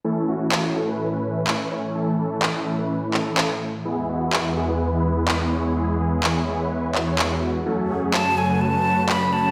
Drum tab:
CP |--x---x-|--x--xx-|--x---x-|--x--xx-|

CP |--x---x-|